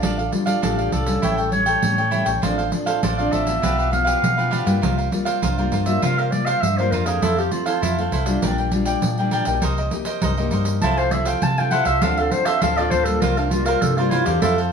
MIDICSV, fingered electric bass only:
0, 0, Header, 1, 2, 480
1, 0, Start_track
1, 0, Tempo, 600000
1, 22, Time_signature, 4, 2, 24, 8
1, 11778, End_track
2, 0, Start_track
2, 0, Title_t, "Fingered electric bass"
2, 0, Program_c, 0, 33
2, 25, Note_on_c, 0, 33, 90
2, 228, Note_off_c, 0, 33, 0
2, 506, Note_on_c, 0, 33, 88
2, 708, Note_off_c, 0, 33, 0
2, 739, Note_on_c, 0, 36, 83
2, 944, Note_off_c, 0, 36, 0
2, 985, Note_on_c, 0, 33, 88
2, 1392, Note_off_c, 0, 33, 0
2, 1464, Note_on_c, 0, 45, 96
2, 1769, Note_off_c, 0, 45, 0
2, 1811, Note_on_c, 0, 33, 93
2, 1918, Note_off_c, 0, 33, 0
2, 1943, Note_on_c, 0, 33, 97
2, 2146, Note_off_c, 0, 33, 0
2, 2423, Note_on_c, 0, 33, 87
2, 2626, Note_off_c, 0, 33, 0
2, 2657, Note_on_c, 0, 33, 83
2, 2863, Note_off_c, 0, 33, 0
2, 2904, Note_on_c, 0, 35, 91
2, 3311, Note_off_c, 0, 35, 0
2, 3383, Note_on_c, 0, 47, 101
2, 3688, Note_off_c, 0, 47, 0
2, 3731, Note_on_c, 0, 43, 97
2, 3838, Note_off_c, 0, 43, 0
2, 3863, Note_on_c, 0, 36, 100
2, 4066, Note_off_c, 0, 36, 0
2, 4341, Note_on_c, 0, 36, 88
2, 4545, Note_off_c, 0, 36, 0
2, 4577, Note_on_c, 0, 43, 80
2, 4783, Note_off_c, 0, 43, 0
2, 4822, Note_on_c, 0, 48, 88
2, 5230, Note_off_c, 0, 48, 0
2, 5301, Note_on_c, 0, 43, 81
2, 5517, Note_off_c, 0, 43, 0
2, 5537, Note_on_c, 0, 41, 80
2, 5755, Note_off_c, 0, 41, 0
2, 5782, Note_on_c, 0, 41, 90
2, 5986, Note_off_c, 0, 41, 0
2, 6261, Note_on_c, 0, 41, 87
2, 6465, Note_off_c, 0, 41, 0
2, 6494, Note_on_c, 0, 36, 82
2, 6701, Note_off_c, 0, 36, 0
2, 6746, Note_on_c, 0, 34, 88
2, 7152, Note_off_c, 0, 34, 0
2, 7227, Note_on_c, 0, 46, 104
2, 7531, Note_off_c, 0, 46, 0
2, 7574, Note_on_c, 0, 34, 95
2, 7680, Note_off_c, 0, 34, 0
2, 7707, Note_on_c, 0, 36, 101
2, 7909, Note_off_c, 0, 36, 0
2, 8185, Note_on_c, 0, 36, 89
2, 8388, Note_off_c, 0, 36, 0
2, 8422, Note_on_c, 0, 43, 86
2, 8627, Note_off_c, 0, 43, 0
2, 8662, Note_on_c, 0, 36, 93
2, 9071, Note_off_c, 0, 36, 0
2, 9143, Note_on_c, 0, 48, 100
2, 9450, Note_off_c, 0, 48, 0
2, 9485, Note_on_c, 0, 36, 98
2, 9596, Note_off_c, 0, 36, 0
2, 9621, Note_on_c, 0, 38, 99
2, 9827, Note_off_c, 0, 38, 0
2, 10103, Note_on_c, 0, 38, 91
2, 10308, Note_off_c, 0, 38, 0
2, 10342, Note_on_c, 0, 38, 86
2, 10548, Note_off_c, 0, 38, 0
2, 10584, Note_on_c, 0, 36, 100
2, 10994, Note_off_c, 0, 36, 0
2, 11067, Note_on_c, 0, 48, 108
2, 11373, Note_off_c, 0, 48, 0
2, 11415, Note_on_c, 0, 40, 95
2, 11522, Note_off_c, 0, 40, 0
2, 11546, Note_on_c, 0, 41, 99
2, 11751, Note_off_c, 0, 41, 0
2, 11778, End_track
0, 0, End_of_file